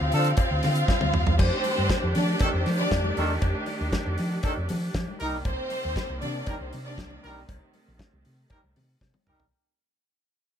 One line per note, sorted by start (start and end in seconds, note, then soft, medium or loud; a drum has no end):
0.00 0.10 D2 loud
0.00 1.35 C3 medium
0.00 1.35 F3 medium
0.00 1.37 C4 medium
0.00 0.34 F4 medium
0.00 0.34 F5 loud
0.12 0.32 D3 loud
0.12 0.29 F3 medium
0.12 0.29 D4 medium
0.12 0.29 A4 loud
0.12 open hi-hat medium
0.25 closed hi-hat soft
0.37 1.37 F4 medium
0.37 1.37 F5 medium
0.37 kick loud
0.37 closed hi-hat medium
0.37 cowbell medium
0.51 0.60 D2 loud
0.63 0.82 D3 loud
0.63 snare soft
0.63 open hi-hat medium
0.63 muted conga soft
0.63 low conga medium
0.75 closed hi-hat soft
0.88 kick loud
0.88 snare medium
0.88 cowbell medium
0.88 high conga medium
1.01 1.11 D2 medium
1.01 high tom medium
1.01 high conga loud
1.14 1.24 D#2 loud
1.14 mid tom medium
1.26 1.36 E2 medium
1.26 floor tom medium
1.26 high conga medium
1.39 1.49 F2 loud
1.39 5.16 D#3 medium
1.39 5.16 A3 medium
1.39 2.11 C4 loud
1.39 5.16 D4 medium
1.39 5.16 G4 medium
1.39 2.11 C5 loud
1.39 kick loud
1.39 crash loud
1.39 cowbell medium
1.39 muted conga medium
1.64 open hi-hat medium
1.64 muted conga soft
1.78 1.87 G2 medium
1.90 kick loud
1.90 snare loud
1.90 closed hi-hat medium
1.90 cowbell medium
1.90 high conga medium
2.04 2.12 F2 loud
2.15 2.34 F3 loud
2.15 2.35 D4 medium
2.15 2.35 D5 medium
2.15 open hi-hat medium
2.15 low conga medium
2.39 2.49 D#3 medium
2.39 2.49 D4 medium
2.39 2.49 A4 loud
2.39 kick loud
2.39 closed hi-hat medium
2.39 cowbell medium
2.39 low conga medium
2.53 2.63 F2 loud
2.53 2.63 C4 medium
2.53 2.63 C5 medium
2.66 2.85 F3 loud
2.66 snare soft
2.66 open hi-hat medium
2.66 muted conga medium
2.78 3.14 D4 medium
2.78 3.14 D5 loud
2.91 3.10 F2 medium
2.91 kick loud
2.91 snare loud
2.91 closed hi-hat medium
2.91 cowbell medium
2.91 high conga medium
3.04 high conga medium
3.17 3.36 E2 loud
3.17 3.33 D#3 medium
3.17 3.33 D4 loud
3.17 3.33 A4 medium
3.17 open hi-hat medium
3.42 3.52 F2 loud
3.42 kick loud
3.42 closed hi-hat medium
3.42 cowbell medium
3.42 muted conga medium
3.66 open hi-hat medium
3.66 muted conga soft
3.81 3.90 D#2 medium
3.92 kick medium
3.92 snare loud
3.92 closed hi-hat medium
3.92 cowbell medium
3.92 high conga medium
4.06 4.15 F2 loud
4.18 4.38 F3 loud
4.18 open hi-hat medium
4.43 4.52 D#3 medium
4.43 4.52 D4 medium
4.43 4.52 A4 loud
4.43 kick loud
4.43 closed hi-hat medium
4.43 cowbell medium
4.57 4.66 F2 medium
4.69 4.88 F3 loud
4.69 open hi-hat medium
4.69 muted conga medium
4.69 low conga medium
4.94 5.04 F3 loud
4.94 kick loud
4.94 snare loud
4.94 closed hi-hat medium
4.94 cowbell medium
4.94 high conga medium
5.08 high conga medium
5.19 5.33 C2 medium
5.19 9.48 C3 medium
5.19 9.47 D#3 medium
5.19 5.36 G3 medium
5.19 7.21 A#3 medium
5.19 5.36 D#4 medium
5.19 5.36 A#4 loud
5.19 open hi-hat medium
5.33 5.42 B1 loud
5.45 5.55 C2 loud
5.45 6.17 C4 loud
5.45 6.17 C5 loud
5.45 kick loud
5.45 closed hi-hat medium
5.45 cowbell medium
5.45 muted conga medium
5.70 open hi-hat medium
5.70 muted conga soft
5.85 5.94 D#2 medium
5.96 kick loud
5.96 snare loud
5.96 closed hi-hat medium
5.96 cowbell medium
5.96 high conga medium
6.10 6.19 C2 medium
6.21 6.41 C3 loud
6.21 6.42 D4 medium
6.21 6.42 D5 loud
6.21 open hi-hat medium
6.21 low conga medium
6.46 6.55 G3 medium
6.46 6.55 D#4 medium
6.46 6.55 A#4 medium
6.46 kick loud
6.46 closed hi-hat medium
6.46 cowbell medium
6.46 low conga medium
6.59 6.70 C2 loud
6.59 6.69 C4 medium
6.59 6.69 C5 medium
6.73 7.00 C3 loud
6.73 open hi-hat medium
6.73 muted conga soft
6.85 7.21 D4 medium
6.85 7.21 D5 medium
6.98 7.17 C2 loud
6.98 kick loud
6.98 snare loud
6.98 closed hi-hat medium
6.98 cowbell medium
6.98 high conga medium
7.11 high conga loud
7.22 7.42 B1 medium
7.22 7.39 G3 medium
7.22 9.49 A3 medium
7.22 7.39 D#4 medium
7.22 7.39 A#4 loud
7.22 open hi-hat medium
7.49 7.58 C2 loud
7.49 kick loud
7.49 closed hi-hat medium
7.49 cowbell medium
7.49 muted conga medium
7.74 open hi-hat medium
7.74 muted conga soft
7.88 7.97 A#1 loud
7.99 kick loud
7.99 snare loud
7.99 closed hi-hat medium
7.99 cowbell medium
7.99 high conga medium
8.13 8.22 C2 medium
8.25 8.44 C3 medium
8.25 open hi-hat medium
8.50 8.58 G3 medium
8.50 8.58 D#4 medium
8.50 8.58 A#4 medium
8.50 kick loud
8.50 closed hi-hat medium
8.50 cowbell medium
8.64 8.73 C2 loud
8.76 8.95 C3 loud
8.76 open hi-hat medium
8.76 muted conga soft
8.76 low conga medium
9.01 9.11 C3 loud
9.01 kick loud
9.01 snare medium
9.01 cowbell medium
9.01 high conga medium
9.14 high tom medium
9.14 high conga medium
9.26 9.36 C2 medium
9.26 9.43 G3 loud
9.26 9.43 D#4 medium
9.26 9.43 A#4 medium
9.26 mid tom medium
9.40 9.49 B1 medium
9.40 floor tom medium